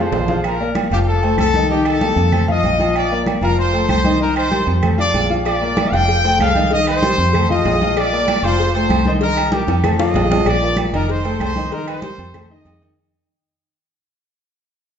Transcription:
Already playing: F3 A4
0.00 F4 C5 F5
0.12 A#1, low bongo, low conga, low timbale
0.28 F3 F4 F5, low bongo, low conga, low timbale
0.44 A#4, high conga, low agogo, claves
0.60 A#3 A#4 D5, high conga
0.75 high conga, low agogo, claves
0.91 F1 F3 F4 G4 F5, high conga, low agogo
1.07 A4, high conga
1.23 A3 A4 C5, high conga, low agogo
1.38 C2 A4, high conga, low agogo, claves
1.54 D#3 D#4 D#5, high conga, low agogo
1.70 D#3 D#4 G4 D#5, high conga
1.85 A4, high conga, low agogo, claves
2.01 G3 A#3 G4, high conga, low agogo
2.16 F2, high conga, low agogo
2.32 A3 A4 C5, high conga, low conga, low agogo, claves
2.48 F3 F4 D#5 F5, high conga, low conga
2.63 A#1, high conga, low agogo
2.80 F3 F4 F5, high conga, low agogo
2.95 D5, high conga, low agogo, claves
3.11 A#3 A#4 D5, high conga
3.26 high conga, low agogo, claves
3.41 F1 F3 F4 A#4 F5, high conga, low agogo
3.58 C5, high conga
3.73 A3 A4 C5, high conga, low agogo
3.89 C2 C5, high conga, low agogo, claves
4.04 D#3 D#4 D#5, high conga, low agogo
4.19 D#3 D#4 A#4 D#5, high conga
4.36 C5, high conga, low agogo, claves
4.51 G3 G4 A#4, high conga, low agogo
4.67 F2, high conga, low agogo
4.82 A3 A4 C5, high conga, low conga, low agogo, claves
4.98 F3 F4 D5 F5, high conga
5.14 A#1, high conga, low timbale, low agogo
5.30 F3 F4 F5, low agogo
5.45 D5, cowbell, high conga, low agogo, claves
5.61 A#3 A#4 D5, high conga
5.77 cowbell, high conga, low agogo, claves
5.92 F1 F3 F4 F5 G5, cowbell, high conga, low agogo
6.08 cowbell, high conga
6.24 A3 A4 C5, cowbell, high conga, low agogo
6.39 C2 F5, cowbell, high conga, low timbale, low agogo, claves
6.55 D#3 D#4 D#5, high conga, low agogo
6.71 D#3 D#4 D#5, cowbell, high conga
6.86 C5, cowbell, low agogo, claves
7.02 G3 G4 A#4, cowbell, high conga, low agogo
7.18 F2, high conga, low agogo
7.33 A3 A4 C5, cowbell, high conga, low conga, low agogo, claves
7.49 F3 F4 D#5 F5, high conga, low conga
7.65 A#1, cowbell, high conga, low timbale, low agogo
7.81 F3 F4 F5, high conga, low agogo
7.97 D5, cowbell, high conga, low agogo, claves
8.12 A#3 A#4 D5, high conga
8.28 cowbell, high conga, low agogo, claves
8.43 F1 F3 F4 C5 F5, cowbell, low agogo
8.60 cowbell
8.74 A3 A4 C5, cowbell, high conga, low agogo
8.89 C2, cowbell, high conga, low agogo, claves
9.06 D#3 D#4 C5 D#5, high conga, low agogo
9.21 D#3 D#4 A#4 D#5, cowbell, high conga
9.37 cowbell, high conga, low agogo, claves
9.52 G3 G4 A#4, cowbell, high conga, low agogo
9.67 F2, high bongo, high conga, low agogo
9.84 A3 A4 C5, cowbell, high bongo, high conga, low conga, low agogo, claves
9.99 F3 F4 D#5 F5, high bongo, high conga, high timbale
10.14 A#1, cowbell, low bongo, high conga, low timbale, low agogo
10.30 F3 F4 F5, low bongo, high conga, low timbale, low agogo
10.46 A#1 D5, cowbell, high conga, low agogo, claves
10.61 F3 F4 A#4, high conga
10.77 cowbell, high conga, low agogo, claves
10.92 F1 D#3 D#4 A#4 D#5, cowbell, high conga, low agogo
11.09 C5, cowbell, high conga
11.24 A3 A4 C5, cowbell, high conga, low agogo
11.40 C2 C5, cowbell, high conga, low timbale, low agogo, claves
11.56 D#3 D#4 D#5, high conga, low agogo
11.71 D#3 D#4 A#4 D#5, cowbell, high conga
11.87 C5, cowbell, high conga, low agogo, claves
12.02 G3 G4 A#4, cowbell, high conga, low agogo
12.18 F2, high conga, low agogo
12.34 A3 A4 C5, cowbell, high conga, low conga, low agogo, claves
12.49 D#3 D#4 D#5, high conga
12.65 F2, cowbell, high conga, low timbale, low agogo
12.82 D#3 D#4 D#5, low agogo

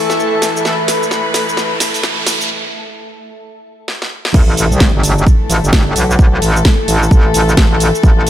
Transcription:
Already playing: E3 A3 E4 A4 E5 A5, riser
0.10 snare, cabasa
0.20 cabasa
0.42 snare, open hi-hat, cabasa
0.57 cabasa
0.65 E3 A3 E4 A4 B4, snare, cabasa
0.88 snare, open hi-hat, cabasa
1.03 cabasa
1.11 snare, cabasa
1.34 snare, open hi-hat, cabasa
1.49 cabasa
1.57 snare, cabasa
1.80 snare, open hi-hat, cabasa
1.94 open hi-hat, cabasa
2.03 snare, cabasa
2.27 snare, open hi-hat, cabasa
2.41 cabasa
3.88 snare
4.02 snare
4.25 snare
4.34 A1 E3 A3 A4, kick, crash, impact, cabasa
4.57 open hi-hat, cabasa
4.71 C2, cabasa
4.80 kick, snare, cabasa
4.94 G1
5.03 open hi-hat, cabasa
5.18 cabasa
5.27 kick, cabasa
5.50 A1, open hi-hat, cabasa
5.64 G1, cabasa
5.73 kick, snare, cabasa
5.96 B1, open hi-hat, cabasa
6.11 cabasa
6.19 kick, cabasa
6.42 A1, open hi-hat, cabasa
6.57 cabasa
6.65 kick, snare, cabasa
6.88 A1, open hi-hat, cabasa
7.03 cabasa
7.11 A1, kick, cabasa
7.34 A1, open hi-hat, cabasa
7.49 cabasa
7.57 A1, kick, snare, cabasa
7.80 open hi-hat, cabasa
7.95 cabasa
8.03 A1, kick, cabasa
8.27 open hi-hat

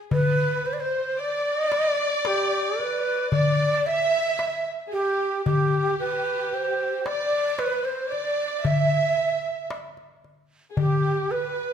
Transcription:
0.11 B4, darbuka dum
0.66 C5
0.73 D5
0.80 C5
1.19 D5
1.72 darbuka tek
2.25 G4, darbuka tek
2.80 B4, darbuka ka
3.32 D5, darbuka dum
3.86 E5
4.39 darbuka tek
4.87 G#4
4.92 G4, darbuka ka
5.46 G4, darbuka dum
5.73 darbuka ka
6.00 B4, darbuka ka
6.53 C5, darbuka ka
7.06 D5, darbuka tek
7.32 darbuka ka
7.58 B4, darbuka tek
7.85 C5
8.10 D5, darbuka ka
8.63 E5, darbuka dum
9.18 darbuka ka
9.70 darbuka tek
9.97 darbuka ka
10.24 darbuka ka
10.70 G#4
10.76 G4, darbuka dum
11.31 B4

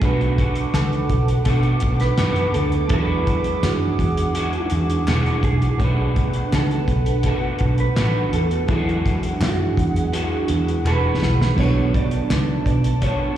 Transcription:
Already playing: G#4
0.00 B1 B2 A3 D4 F#4 B4 F#5, kick, closed hi-hat
0.04 F#4 B4 D6
0.21 closed hi-hat
0.38 A3 D4 F#4, kick, closed hi-hat
0.55 closed hi-hat
0.74 C#2 A4, snare, clap, closed hi-hat
0.93 closed hi-hat
1.10 B1, kick, closed hi-hat
1.28 closed hi-hat
1.45 B2 A3 D4 F#4 A4, kick, closed hi-hat
1.63 closed hi-hat
1.80 B1, kick, closed hi-hat
2.00 B4, snare, closed hi-hat
2.18 F#2 B2 A3 D4 F#4, snare, clap, closed hi-hat
2.36 closed hi-hat
2.54 D2 A4, closed hi-hat
2.72 closed hi-hat
2.88 E2 E3 F#3 G#3 D4 E4 G#4 B4 F#5, kick, closed hi-hat
2.92 F#4 G#4
3.27 kick, closed hi-hat
3.44 closed hi-hat
3.63 F#2 F#4, snare, clap, closed hi-hat
3.99 E2, kick, closed hi-hat
4.17 closed hi-hat
4.35 E3 G#3 D4 F#4, closed hi-hat
4.53 closed hi-hat
4.70 E2, closed hi-hat
4.90 closed hi-hat
5.07 E1 E3 G#3 D4 F#4, snare, clap, closed hi-hat
5.26 closed hi-hat
5.43 B1 G#4, kick, closed hi-hat
5.62 closed hi-hat
5.78 B1 B2 A3 C#4 D4 F#4 B4 F#5, kick, closed hi-hat
5.84 D4 B4
6.16 kick, closed hi-hat
6.33 closed hi-hat
6.53 C#2 A4, snare, clap, closed hi-hat
6.71 closed hi-hat
6.88 B1, kick, closed hi-hat
7.06 closed hi-hat
7.23 B2 A3 D4 F#4 A4, kick, closed hi-hat
7.59 B1, kick, closed hi-hat
7.78 B4, closed hi-hat
7.96 A1 B2 A3 D4 F#4, snare, clap, closed hi-hat
8.33 E2 A4, closed hi-hat
8.51 closed hi-hat
8.67 E2 E3 F#3 G#3 D4 E4 G#4 F#5, kick, closed hi-hat
8.72 F#4 G#4
8.89 closed hi-hat
9.06 kick, closed hi-hat
9.23 closed hi-hat
9.40 F#2 F#4, snare, clap, closed hi-hat
9.77 E2, kick, closed hi-hat
9.96 closed hi-hat
10.12 E3 G#3 D4 F#4, closed hi-hat
10.48 E2, closed hi-hat
10.68 closed hi-hat
10.85 E1 E3 G#3 D4 F#4 B4, clap
11.22 B1, snare
11.42 snare
11.56 B1 B2 F#3 A3 B3 D4 F#4 B4 C#5 A5, kick, splash
11.61 A4
11.94 D5, kick, closed hi-hat
12.11 closed hi-hat
12.30 C#2, snare, clap, closed hi-hat
12.66 B1 D5, kick, closed hi-hat
12.84 closed hi-hat
13.01 B2 A3 D4 F#4 C#5, kick, closed hi-hat

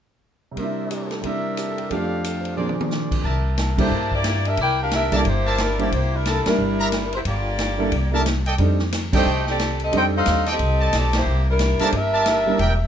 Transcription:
0.51 C3 G3
0.57 A#3 D4 A#4 C5 D5 E5, kick, ride
0.63 E4
0.90 G4 A#5, hi-hat pedal, ride
1.02 A5
1.07 A4, snare, ride
1.13 G5
1.21 C3 G3 A#3 D4 A#4 C5 D5 E5, kick, ride
1.26 E4
1.57 G4 A5, cross-stick, hi-hat pedal, ride
1.68 A4
1.74 G5
1.78 A#4, ride
1.90 F2 F3 A3 D4 G4 A4 D5 F5, kick, ride
2.24 A4, hi-hat pedal, ride
2.41 C5
2.45 ride
2.57 A#2 F3 C4 D4 G#4 A#4 C5 D5, high tom
2.69 high tom
2.81 high tom
2.91 snare, hi-hat pedal
3.12 kick, crash
3.23 C2 A#4 D5 E5 A5, kick
3.58 snare, hi-hat pedal, ride
3.77 G3 A#3 D4 E4 G4 A4 C5, kick, crash
3.91 G2
4.12 A#3 E4 G4 D5, kick
4.24 snare, hi-hat pedal, ride
4.45 D4 G4 A#4 E5, ride
4.57 C2, kick, ride
4.62 E4 A#4 D5 G5
4.83 D4 G4 A#4 F5
4.91 D4 G4 A#4 E5, snare, hi-hat pedal, ride
5.11 G3 A#3 D4 E4 A4 A#4 D5 E5 A5, kick, ride
5.15 A#3 E4 G4 D5
5.25 G1 A#3 E4 G4 C5, kick, ride
5.46 A#4 D5 E5 A5
5.58 G3 D4 E4 A#4, snare, hi-hat pedal, ride
5.78 G3 A#3 D4 E4 G4 C5 D5, ride
5.92 C2 A#3 E4 G4 C5, kick, ride
6.16 G3 D4 E4 A#4
6.26 G3 D4 E4 A4 A#4 D5 E5 A5, snare, hi-hat pedal, ride
6.46 G3 A#3 D4 E4 A#4, muted upright bass stroke, snare, ride
6.58 G1
6.79 A#4 D5 E5 A#5
6.92 snare, hi-hat pedal, ride
7.13 A#3 E4 G4 C5, ride
7.25 G1 A#3 F4 G4 D5, kick, ride
7.59 snare, hi-hat pedal, ride
7.78 G3 A#3 D4 E4 A4
7.92 C2, kick, ride
8.11 G3 A#3 D4 E4 A4 A#4 D5 E5 A5
8.26 snare, hi-hat pedal, ride
8.46 A4 D5 D#5 G5, ride
8.58 F2 G3 C4 D4 D#4 A4, kick, ride
8.79 snare
8.93 snare, hi-hat pedal, ride
9.12 G3 A3 C4 D4 D#4 A4 C5 D5 D#5 G5, kick, crash
9.16 G4
9.25 C2
9.47 C4 G4 A4 D5, snare
9.59 snare, hi-hat pedal, ride
9.80 ride
9.84 C4 G4 A4 D#5
9.91 F2 G3 C4 D4 D#4 A4, kick, ride
9.97 D#4 A4 C5 G5
10.18 D#4 A4 C5 F5
10.26 D#2, snare, hi-hat pedal, ride
10.46 A4 D5 D#5 G5, snare, ride
10.52 C4 G4 A4 D#5
10.59 C2, kick, ride
10.80 A4 D5 D#5 A5
10.93 B1, snare, hi-hat pedal, ride
10.97 C4 G4 A4 D5
11.13 A#3 C5, snare, ride
11.17 E4 G4
11.26 C2
11.50 G3 D4 E4 A#4
11.59 snare, hi-hat pedal, ride
11.79 G3 A#3 D4 E4 G4 A4 A#4 D5 E5 A5, muted upright bass stroke, ride
11.83 A#3 E4 C5
11.92 G1, kick, ride
11.97 D4 G4 A#4 E5
12.13 A#4 D5 E5 A5
12.26 snare, hi-hat pedal, ride
12.46 G3 A#3 D4 E4 A#4
12.59 E1 A#4 D5 E5 G5, kick, ride

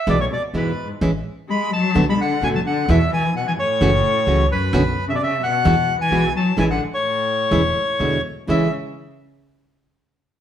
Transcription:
0.07 B1 B2 E3 G#3 B3 E4 D5
0.19 A2 C#5
0.31 B2 D5
0.54 E2 G#2 B2 E3 G#3 B3 E4 B4
1.01 A1 E3 G#3 C#4 E4
1.48 G#3 B5
1.73 F#3 A5
1.94 B1 B2 D3 A3 B3 F#4
2.08 G#3 B5
2.19 D3 F#5
2.42 F#1 B2 D3 A3 B3 F#4 G#5
2.53 F#3 A5
2.65 D3 F#5
2.89 E2 B2 E3 G#3 B3 E4 E5
3.11 E3 G#5
3.35 B2 F#5
3.47 E3 G#5
3.58 A2 C#5
3.81 F#1 C#3 E3 A3 C#4 F#4
4.27 C#2 C#3 E3 A3 C#4 F#4
4.50 F#2 B4
4.73 B1 B2 D3 B3 C#4 F#4
5.08 C#3 E5
5.14 B2 D5
5.21 C#3 E5
5.42 B2 F#5
5.65 E2 B2 E3 G#3 B3 F#4
6.00 E3 G#5
6.11 B1 B2 E3 G#3 B3 F#4
6.35 F#3 A5
6.57 A1 E3 G#3 C#4 E4 G#5
6.70 D3 F#5
6.93 A2 C#5
7.51 E1 E3 G#3 C#4 E4
8.00 E2 B2 D3 G#3 B3 E4
8.48 A1 A2 C#3 E3 G#3 C#4 E4 E5

